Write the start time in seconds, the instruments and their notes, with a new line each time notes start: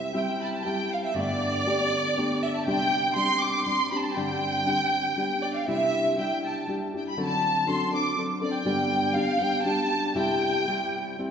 Already playing: nylon-string guitar C3 G3 C4 E4 G4, violin section E5
0.14 nylon-string guitar G3 C4 E4 G4, violin section G5
0.39 violin section A5 B5
0.53 violin section A5
0.65 nylon-string guitar G3 C4 E4 G4, violin section G5
0.93 violin section F5
1.05 violin section E5
1.15 nylon-string guitar G2 D3 A3 B3 D4 G4, violin section D5
1.66 nylon-string guitar A3 B3 D4 G4
2.17 nylon-string guitar A3 B3 D4 G4
2.43 violin section E5
2.55 violin section A5
2.65 nylon-string guitar C3 G3 C4 D4 G4, violin section G5
3.16 nylon-string guitar G3 C4 D4 G4, violin section C6
3.40 violin section D6
3.53 violin section D6
3.65 nylon-string guitar G3 C4 D4 G4, violin section C6
3.92 nylon-string guitar C4 D4 G4, violin section B5
4.03 violin section A5
4.14 nylon-string guitar G2 D3 G3 C4 D4 G4, violin section G5
4.65 nylon-string guitar G3 C4 D4 G4
5.16 nylon-string guitar G3 B3 D4 G4
5.43 violin section D5
5.54 violin section F5
5.68 nylon-string guitar C3 G3 D4 E4 G4, violin section E5
6.18 nylon-string guitar G3 D4 E4 G4, violin section G5
6.46 violin section A5
6.67 nylon-string guitar G3 D4 E4 G4
6.94 nylon-string guitar D4 E4 G4, violin section G5
7.09 violin section B5
7.17 nylon-string guitar D3 F#3 C4 D4 A4
7.22 violin section A5
7.67 nylon-string guitar F#3 C4 D4 A4, violin section C6
7.93 nylon-string guitar C4 D4 A4, violin section D6
8.17 nylon-string guitar F#3 C4 D4 A4
8.42 nylon-string guitar C4 D4 A4, violin section D5
8.55 violin section G5
8.65 nylon-string guitar G2 D3 G3 B3 D4 G4
9.15 nylon-string guitar G3 B3 D4 G4, violin section F5
9.40 nylon-string guitar G3 B3 D4 G4, violin section G5
9.64 nylon-string guitar G3 B3 D4 G4, violin section A5
10.15 nylon-string guitar C3 G3 C4 E4 G4, violin section G5
10.67 nylon-string guitar G3 C4 E4 G4
11.18 nylon-string guitar G3 C4 E4 G4